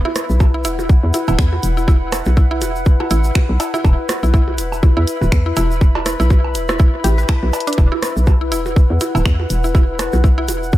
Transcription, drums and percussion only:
0.05 percussion blips soft
0.16 cross-stick medium
0.16 closed hi-hat medium
0.16 shaker medium
0.30 shaker medium
0.40 kick loud
0.40 percussion blips soft
0.40 high woodblock medium
0.40 shaker soft
0.64 closed hi-hat medium
0.64 shaker medium
0.79 percussion blips soft
0.79 shaker soft
0.89 kick loud
0.89 shaker soft
1.14 closed hi-hat medium
1.14 percussion blips soft
1.14 shaker medium
1.28 high woodblock medium
1.28 shaker medium
1.39 finger snap loud
1.39 kick loud
1.39 shaker soft
1.53 percussion blips soft
1.63 closed hi-hat medium
1.63 shaker medium
1.77 shaker medium
1.88 kick loud
1.88 percussion blips soft
1.88 shaker soft
2.12 cross-stick medium
2.12 closed hi-hat medium
2.12 high woodblock medium
2.12 shaker medium
2.25 percussion blips soft
2.25 shaker soft
2.37 kick loud
2.37 shaker soft
2.61 closed hi-hat medium
2.61 percussion blips soft
2.61 shaker medium
2.76 shaker soft
2.86 kick loud
2.86 shaker soft
3.00 percussion blips soft
3.00 high woodblock medium
3.11 closed hi-hat medium
3.11 shaker medium
3.24 shaker medium
3.35 finger snap loud
3.35 kick loud
3.35 percussion blips soft
3.35 shaker soft
3.60 closed hi-hat medium
3.60 cowbell medium
3.60 shaker medium
3.74 percussion blips soft
3.74 shaker soft
3.85 kick loud
3.85 high woodblock medium
3.85 shaker soft
4.09 cross-stick medium
4.09 closed hi-hat medium
4.09 percussion blips soft
4.09 shaker medium
4.23 shaker medium
4.34 kick loud
4.34 shaker soft
4.48 percussion blips soft
4.58 closed hi-hat medium
4.58 shaker loud
4.72 high woodblock medium
4.72 shaker soft
4.83 kick loud
4.83 percussion blips soft
4.83 shaker soft
5.07 closed hi-hat medium
5.07 shaker medium
5.21 percussion blips soft
5.21 shaker soft
5.32 finger snap loud
5.32 kick loud
5.32 shaker soft
5.57 closed hi-hat medium
5.57 percussion blips soft
5.57 high woodblock medium
5.57 shaker medium
5.71 shaker soft
5.81 kick loud
5.81 shaker soft
5.95 cowbell medium
5.95 percussion blips soft
6.06 cross-stick medium
6.06 closed hi-hat medium
6.06 shaker medium
6.20 shaker medium
6.30 kick loud
6.30 percussion blips soft
6.30 shaker soft
6.44 high woodblock medium
6.55 closed hi-hat medium
6.55 shaker medium
6.68 cross-stick medium
6.68 percussion blips soft
6.68 shaker soft
6.79 kick loud
6.79 shaker soft
7.04 closed hi-hat medium
7.04 percussion blips soft
7.04 shaker medium
7.18 shaker medium
7.28 finger snap loud
7.28 kick loud
7.28 high woodblock medium
7.28 shaker soft
7.43 percussion blips soft
7.53 closed hi-hat medium
7.53 cowbell medium
7.53 shaker medium
7.60 closed hi-hat medium
7.67 closed hi-hat medium
7.67 shaker medium
7.73 closed hi-hat medium
7.78 kick loud
7.78 shaker soft
7.92 percussion blips soft
8.02 cross-stick medium
8.02 closed hi-hat medium
8.02 shaker medium
8.17 shaker medium
8.27 kick loud
8.27 percussion blips soft
8.27 high woodblock medium
8.27 shaker soft
8.52 closed hi-hat medium
8.52 shaker medium
8.66 percussion blips soft
8.66 shaker soft
8.76 kick loud
8.76 shaker soft
9.00 closed hi-hat medium
9.00 percussion blips soft
9.00 shaker medium
9.15 high woodblock medium
9.15 shaker medium
9.26 finger snap loud
9.26 kick loud
9.26 shaker soft
9.39 percussion blips soft
9.50 closed hi-hat medium
9.50 shaker medium
9.64 shaker medium
9.75 kick loud
9.75 percussion blips soft
9.75 shaker soft
9.99 cross-stick medium
9.99 closed hi-hat loud
9.99 high woodblock medium
9.99 shaker medium
10.13 percussion blips soft
10.13 shaker medium
10.24 kick loud
10.24 shaker soft
10.48 closed hi-hat loud
10.48 percussion blips soft
10.48 shaker loud
10.63 shaker medium
10.72 kick loud
10.72 shaker soft

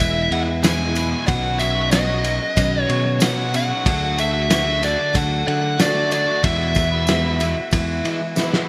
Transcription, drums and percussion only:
0.00 ride medium
0.32 ride medium
0.64 snare loud
0.64 ride loud
0.64 tambourine loud
0.95 ride medium
0.95 tambourine medium
1.27 kick loud
1.27 ride medium
1.27 tambourine soft
1.59 ride medium
1.59 tambourine medium
1.91 snare loud
1.91 ride loud
1.91 tambourine loud
2.24 ride medium
2.24 tambourine medium
2.57 kick medium
2.57 ride medium
2.57 tambourine medium
2.89 ride medium
3.20 snare loud
3.20 ride loud
3.20 tambourine loud
3.54 ride medium
3.54 tambourine medium
3.86 kick loud
3.86 ride loud
3.86 tambourine soft
4.18 ride medium
4.18 tambourine medium
4.50 snare loud
4.50 ride loud
4.50 tambourine medium
4.83 ride medium
4.83 tambourine medium
5.15 kick medium
5.15 ride medium
5.15 tambourine medium
5.48 ride medium
5.79 snare loud
5.79 ride loud
5.79 tambourine loud
6.11 ride medium
6.11 tambourine medium
6.43 kick loud
6.43 ride loud
6.43 tambourine soft
6.75 kick medium
6.75 ride medium
6.75 tambourine medium
7.07 snare loud
7.07 ride loud
7.07 tambourine medium
7.40 ride medium
7.40 tambourine medium
7.71 kick medium
7.71 ride loud
7.71 tambourine medium
8.05 ride medium
8.05 tambourine soft
8.36 snare medium
8.36 tambourine medium
8.53 snare medium

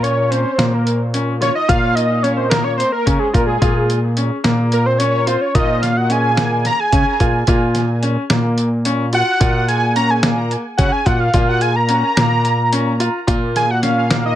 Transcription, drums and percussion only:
0.04 closed hi-hat medium
0.32 closed hi-hat medium
0.59 snare loud
0.59 closed hi-hat medium
0.87 closed hi-hat medium
1.14 closed hi-hat medium
1.42 snare soft
1.42 closed hi-hat medium
1.69 kick loud
1.69 closed hi-hat medium
1.97 closed hi-hat medium
2.24 closed hi-hat medium
2.51 snare loud
2.51 closed hi-hat medium
2.80 closed hi-hat medium
3.07 kick medium
3.07 closed hi-hat medium
3.34 kick medium
3.34 closed hi-hat medium
3.62 kick loud
3.62 closed hi-hat medium
3.90 closed hi-hat medium
4.17 closed hi-hat medium
4.44 snare loud
4.44 closed hi-hat medium
4.72 closed hi-hat medium
5.00 closed hi-hat medium
5.27 closed hi-hat medium
5.55 kick loud
5.55 closed hi-hat medium
5.83 snare soft
5.83 closed hi-hat medium
6.10 closed hi-hat medium
6.37 snare loud
6.37 closed hi-hat medium
6.65 snare soft
6.65 closed hi-hat medium
6.93 kick loud
6.93 closed hi-hat medium
7.20 kick medium
7.20 closed hi-hat medium
7.47 kick loud
7.47 closed hi-hat medium
7.75 snare soft
7.75 closed hi-hat medium
8.03 closed hi-hat medium
8.30 snare loud
8.30 closed hi-hat medium
8.58 closed hi-hat medium
8.85 closed hi-hat medium
9.13 closed hi-hat medium
9.41 kick loud
9.41 closed hi-hat medium
9.69 closed hi-hat medium
9.96 closed hi-hat medium
10.23 snare loud
10.23 closed hi-hat medium
10.51 closed hi-hat medium
10.79 kick loud
10.79 closed hi-hat medium
11.06 kick medium
11.06 closed hi-hat medium
11.34 kick loud
11.34 closed hi-hat medium
11.61 closed hi-hat medium
11.89 closed hi-hat medium
12.17 snare loud
12.17 closed hi-hat medium
12.45 closed hi-hat medium
12.73 closed hi-hat medium
13.00 closed hi-hat medium
13.28 kick loud
13.28 closed hi-hat medium
13.56 snare soft
13.56 closed hi-hat medium
13.83 snare soft
13.83 closed hi-hat medium
14.11 snare loud
14.11 closed hi-hat medium

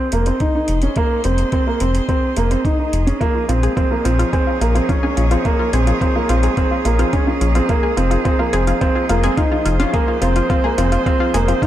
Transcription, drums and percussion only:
0.12 closed hi-hat medium
0.26 closed hi-hat soft
0.40 kick medium
0.40 closed hi-hat soft
0.68 closed hi-hat medium
0.82 closed hi-hat soft
0.96 kick medium
0.96 closed hi-hat soft
1.24 closed hi-hat medium
1.38 closed hi-hat soft
1.52 kick medium
1.52 closed hi-hat soft
1.80 closed hi-hat medium
1.95 closed hi-hat soft
2.09 kick medium
2.09 closed hi-hat soft
2.37 closed hi-hat medium
2.51 closed hi-hat soft
2.65 kick loud
2.65 closed hi-hat soft
2.93 closed hi-hat medium
3.07 closed hi-hat soft
3.21 kick medium
3.21 closed hi-hat soft
3.49 closed hi-hat medium
3.63 closed hi-hat soft
3.77 kick medium
3.77 closed hi-hat soft
4.05 closed hi-hat medium
4.19 closed hi-hat soft
4.33 kick medium
4.33 closed hi-hat soft
4.61 closed hi-hat medium
4.76 closed hi-hat soft
4.89 kick medium
4.89 closed hi-hat soft
5.17 closed hi-hat medium
5.31 closed hi-hat soft
5.45 kick medium
5.45 closed hi-hat soft
5.73 closed hi-hat medium
5.87 closed hi-hat soft
6.01 kick medium
6.01 closed hi-hat soft
6.29 closed hi-hat medium
6.43 closed hi-hat soft
6.57 kick medium
6.57 closed hi-hat soft
6.85 closed hi-hat medium
6.99 closed hi-hat soft
7.13 kick medium
7.13 closed hi-hat soft
7.41 closed hi-hat medium
7.55 closed hi-hat soft
7.69 kick medium
7.69 closed hi-hat soft
7.97 closed hi-hat medium
8.11 closed hi-hat soft
8.25 kick medium
8.25 closed hi-hat soft
8.53 closed hi-hat medium
8.67 closed hi-hat soft
8.81 kick medium
8.81 closed hi-hat soft
9.09 closed hi-hat medium
9.24 closed hi-hat soft
9.38 kick medium
9.38 closed hi-hat soft
9.66 closed hi-hat medium
9.80 closed hi-hat soft
9.94 kick medium
9.94 closed hi-hat soft
10.22 closed hi-hat medium
10.36 closed hi-hat soft
10.50 kick loud
10.50 closed hi-hat soft
10.78 closed hi-hat medium
10.92 closed hi-hat soft
11.06 kick medium
11.06 closed hi-hat soft
11.34 closed hi-hat medium
11.48 closed hi-hat soft
11.62 kick medium
11.62 closed hi-hat soft

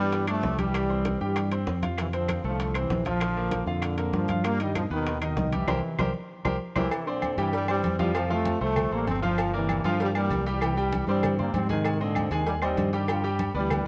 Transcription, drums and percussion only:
0.12 high bongo medium
0.12 high conga soft
0.12 high timbale medium
0.28 high conga soft
0.28 high timbale loud
0.28 claves medium
0.43 high bongo medium
0.43 low bongo medium
0.43 high conga medium
0.43 low timbale medium
0.58 high conga medium
0.58 high timbale medium
0.74 high bongo medium
0.74 high conga soft
0.74 high timbale medium
0.74 claves medium
0.90 high bongo soft
0.90 high conga soft
1.05 high bongo medium
1.05 high conga medium
1.05 high timbale medium
1.21 high bongo soft
1.21 high conga soft
1.36 high bongo medium
1.36 high conga soft
1.36 high timbale medium
1.36 claves medium
1.52 high conga soft
1.52 high timbale medium
1.67 high bongo medium
1.67 low bongo medium
1.67 high conga medium
1.82 high bongo soft
1.82 high conga medium
1.82 high timbale medium
1.98 high bongo medium
1.98 high conga soft
1.98 high timbale medium
1.98 claves medium
2.13 high conga soft
2.13 high timbale medium
2.28 high bongo medium
2.28 high conga medium
2.28 high timbale medium
2.28 claves medium
2.44 high conga soft
2.60 high bongo medium
2.60 high conga soft
2.60 high timbale medium
2.74 high conga soft
2.74 high timbale medium
2.74 claves medium
2.90 high bongo medium
2.90 low bongo medium
2.90 high conga medium
2.90 low timbale medium
3.05 high conga medium
3.05 high timbale medium
3.20 high bongo medium
3.20 high conga soft
3.20 high timbale medium
3.20 claves medium
3.36 high bongo soft
3.36 high conga soft
3.51 high bongo medium
3.51 high conga loud
3.51 high timbale medium
3.67 high bongo soft
3.67 high conga soft
3.82 high bongo medium
3.82 high conga soft
3.82 high timbale medium
3.82 claves medium
3.98 high conga soft
3.98 high timbale medium
4.13 high bongo medium
4.13 low bongo medium
4.13 high conga medium
4.28 high bongo soft
4.28 high conga medium
4.28 high timbale medium
4.44 high bongo medium
4.44 high conga soft
4.44 high timbale medium
4.44 claves medium
4.60 high conga soft
4.60 high timbale medium
4.75 high bongo medium
4.75 high conga medium
4.75 high timbale medium
4.75 claves medium
4.91 high conga soft
5.06 high bongo medium
5.06 high conga soft
5.06 high timbale medium
5.22 high conga soft
5.22 high timbale medium
5.22 claves medium
5.37 high bongo medium
5.37 low bongo medium
5.37 high conga medium
5.53 high conga medium
5.53 high timbale medium
5.68 low bongo loud
5.68 high conga medium
5.68 high timbale loud
5.68 claves loud
5.99 low bongo loud
5.99 high conga loud
5.99 high timbale loud
5.99 claves loud
6.45 low bongo loud
6.45 high conga loud
6.45 high timbale loud
6.45 claves loud
6.76 low bongo loud
6.76 high conga loud
6.76 high timbale medium
6.76 claves loud
6.91 cowbell loud
6.91 high conga soft
6.91 low agogo loud
6.91 claves medium
7.07 high conga soft
7.22 cowbell medium
7.22 high conga medium
7.22 low agogo loud
7.22 claves medium
7.38 cowbell medium
7.38 high conga soft
7.38 low agogo medium
7.53 cowbell loud
7.53 high conga soft
7.68 high conga soft
7.68 low agogo loud
7.68 claves medium
7.84 cowbell medium
7.84 high conga medium
7.84 low agogo medium
7.99 cowbell medium
7.99 high conga medium
8.14 cowbell loud
8.14 high conga soft
8.14 low agogo loud
8.14 claves medium
8.30 high conga soft
8.45 cowbell medium
8.45 high conga loud
8.45 low agogo medium
8.61 high conga soft
8.76 cowbell loud
8.76 high conga soft
8.76 low conga medium
8.76 low agogo loud
8.76 claves medium
8.92 high conga soft
9.07 cowbell medium
9.07 high conga medium
9.07 low timbale medium
9.07 low agogo medium
9.23 cowbell medium
9.23 high conga medium
9.38 cowbell loud
9.38 high conga soft
9.38 low agogo loud
9.38 claves medium
9.54 high conga soft
9.69 cowbell medium
9.69 high conga medium
9.69 low agogo loud
9.69 claves medium
9.84 cowbell medium
9.84 high conga soft
9.84 low agogo medium
10.00 cowbell loud
10.00 high conga soft
10.15 high conga soft
10.15 low agogo loud
10.15 claves medium
10.31 cowbell medium
10.31 high conga medium
10.31 low agogo medium
10.46 cowbell medium
10.61 cowbell loud
10.61 high conga soft
10.61 low agogo loud
10.61 claves medium
10.78 high conga soft
10.93 cowbell medium
10.93 high conga loud
10.93 low agogo medium
11.08 high conga soft
11.23 cowbell loud
11.23 high conga soft
11.23 low conga medium
11.23 low agogo loud
11.23 claves medium
11.39 high conga soft
11.39 low conga medium
11.54 cowbell medium
11.54 high conga medium
11.54 low agogo medium
11.69 cowbell medium
11.69 high conga medium
11.84 cowbell loud
11.84 high conga soft
11.84 low agogo loud
11.84 claves medium
12.01 high conga soft
12.15 cowbell medium
12.15 high conga medium
12.15 low agogo loud
12.15 claves medium
12.31 cowbell medium
12.31 high conga soft
12.31 low agogo medium
12.47 cowbell loud
12.47 high conga soft
12.62 high conga soft
12.62 low agogo loud
12.62 claves medium
12.77 cowbell medium
12.77 high conga medium
12.77 low agogo medium
12.93 cowbell medium
13.08 cowbell loud
13.08 high conga soft
13.08 low agogo loud
13.08 claves medium
13.24 high conga soft
13.39 cowbell medium
13.39 high conga loud
13.39 low agogo medium
13.55 high conga soft
13.70 cowbell loud
13.70 high conga soft
13.70 low conga medium
13.70 low agogo loud
13.70 claves medium

